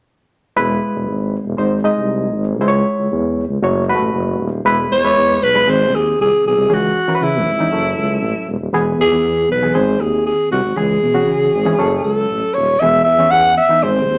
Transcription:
0.56 tuba E1, reed electric piano G#3 E4 B4
0.95 tuba E1
1.08 tuba G#1
1.45 tuba E1
1.57 tuba G#1, reed electric piano G#3 D#4 C5
1.84 reed electric piano G#3 D#4 D#5
1.97 tuba C2
2.34 tuba G#1
2.60 tuba C#2, reed electric piano G#3 E4 C5
2.68 reed electric piano C#5
2.99 tuba C#2
3.12 tuba E2
3.49 tuba C#2
3.62 tuba F#1, reed electric piano A3 F#4 C#5
3.89 reed electric piano G#3 F#4 B4
3.95 reed electric piano A3
4.01 tuba A1
4.13 tuba F#1
4.39 tuba D#1
4.64 tuba E1, reed electric piano G#3 E4 B4
4.90 tuba E2, alto saxophone C#5
5.04 reed electric piano G#3 E4 B4
5.16 tuba E2
5.42 tuba B1, alto saxophone B4
5.55 reed electric piano G#3 E4 B4
5.67 tuba G#1, reed electric piano D#3 C4 G#4, alto saxophone C5
5.93 tuba D#2, alto saxophone G#4
6.19 tuba C2, alto saxophone G#4
6.45 tuba B1, alto saxophone G#4
6.57 tuba C2
6.69 tuba C#2, reed electric piano E3 C#4 G#4
6.74 alto saxophone F#4
7.08 reed electric piano E3 C#4 A#4
7.15 reed electric piano B4
7.21 tuba C#3, alto saxophone E4
7.46 tuba G#1
7.59 reed electric piano E3 C#4 D#4
7.72 tuba F#1, reed electric piano F#3 C#4 A4
7.97 tuba C#2
8.22 tuba A1
8.47 tuba E1
8.59 tuba D#1
8.72 tuba E1, reed electric piano E3 B3 G#4
8.97 tuba E2, alto saxophone G#4
9.12 reed electric piano E3 B3 G#4
9.23 tuba E2
9.49 tuba B1, alto saxophone B4
9.62 reed electric piano E3 B3 G#4
9.74 tuba G#1, reed electric piano D#3 C4 G#4, alto saxophone C5
9.99 tuba D#2, alto saxophone G#4
10.27 alto saxophone G#4
10.51 tuba C2, alto saxophone F#4
10.64 tuba G#1
10.76 tuba C#2, reed electric piano E3 C#4 G#4, alto saxophone G#4
11.02 tuba B2
11.14 reed electric piano E3 C#4 F#4
11.28 tuba C#3
11.54 tuba G#1
11.65 reed electric piano E3 C#4 G#4
11.78 tuba F#1, reed electric piano F#3 C#4 A4
12.04 tuba C#2, alto saxophone A4
12.30 tuba A1
12.54 tuba D#1, alto saxophone C#5
12.80 tuba E1, reed electric piano E3 B3 G#4, alto saxophone E5
13.04 tuba E2, alto saxophone E5
13.18 reed electric piano E3 B3 C#4
13.31 tuba E2, alto saxophone F#5
13.57 alto saxophone E5
13.69 reed electric piano E3 B3 D#4
13.82 tuba G#1, reed electric piano D#3 C4 G#4, alto saxophone C5
14.08 tuba D#2

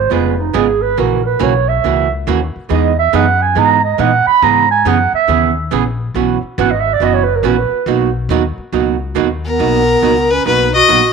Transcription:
Already playing: upright bass G#1, clarinet C5
0.10 upright bass F1, hollow-body jazz guitar C#3 G#3 B3 F4 G#4, clarinet B4
0.39 clarinet D#4
0.54 upright bass G#1, hollow-body jazz guitar C#3 G#3 B3 F4 G#4, clarinet G#4
0.82 clarinet B4
0.97 upright bass A#1, hollow-body jazz guitar C#3 E3 A#3 C#4 F#4, clarinet A#4
1.26 clarinet B4
1.39 upright bass B1, hollow-body jazz guitar C#3 E3 A#3 C#4 F#4, clarinet C#5
1.69 clarinet E5
1.84 upright bass C#2, hollow-body jazz guitar C#3 E3 A#3 C#4 F#4
2.27 upright bass D#2, hollow-body jazz guitar C#3 E3 A#3 C#4 F#4
2.56 muted upright bass stroke
2.69 upright bass E2, hollow-body jazz guitar E3 G#3 B3 D#4 G#4, clarinet D#5
2.99 clarinet E5
3.13 upright bass F#2, hollow-body jazz guitar E3 G#3 B3 D#4 G#4, clarinet F#5
3.42 clarinet G#5
3.55 upright bass G#2, hollow-body jazz guitar E3 G#3 B3 D#4 G#4, clarinet A#5
3.84 clarinet D#5
3.98 upright bass A#2, hollow-body jazz guitar E3 G#3 B3 D#4 G#4, clarinet F#5
4.27 clarinet B5, muted upright bass stroke
4.42 upright bass G#2, hollow-body jazz guitar C#3 E3 B3 C#4 G#4, clarinet A#5
4.71 clarinet G#5
4.85 upright bass F#2, hollow-body jazz guitar C#3 E3 B3 C#4 G#4, clarinet F#5
5.13 clarinet E5, muted upright bass stroke
5.28 upright bass D#2, hollow-body jazz guitar C#3 E3 B3 C#4 G#4
5.71 upright bass A#1, hollow-body jazz guitar C#3 E3 B3 C#4 G#4
6.14 upright bass B1, hollow-body jazz guitar B2 E3 B3 C#4 F#4
6.43 muted upright bass stroke
6.58 upright bass G#1, hollow-body jazz guitar B2 E3 B3 C#4 F#4, clarinet F#5
6.71 clarinet D#5
6.80 clarinet E5
6.93 clarinet D5
7.00 upright bass F#1, hollow-body jazz guitar B2 E3 B3 C#4 F#4, clarinet D#5
7.14 clarinet C#5
7.24 clarinet B4
7.36 clarinet A#4
7.43 upright bass A#1, hollow-body jazz guitar B2 E3 B3 C#4 F#4, clarinet B4
7.71 muted upright bass stroke
7.86 upright bass B1, hollow-body jazz guitar B2 F#3 A#3 D#4 F#4
8.29 upright bass D#2, hollow-body jazz guitar B2 F#3 A#3 D#4 F#4
8.58 muted upright bass stroke
8.73 upright bass C#2, hollow-body jazz guitar B2 F#3 A#3 D#4 F#4
9.15 upright bass D#2, hollow-body jazz guitar B2 F#3 A#3 D#4 F#4
9.45 clarinet B3, fiddle A#4
9.59 upright bass B1, hollow-body jazz guitar B2 F#3 A#3 D#4 F#4
10.02 upright bass C#2, hollow-body jazz guitar B2 F#3 A#3 D#4 F#4
10.30 clarinet C#4, fiddle B4
10.45 upright bass B1, hollow-body jazz guitar B2 F#3 A#3 D#4 F#4, clarinet D#4, fiddle B4
10.74 clarinet F#4, fiddle D#5
10.88 upright bass A#1, hollow-body jazz guitar B2 F#3 A#3 D#4 F#4

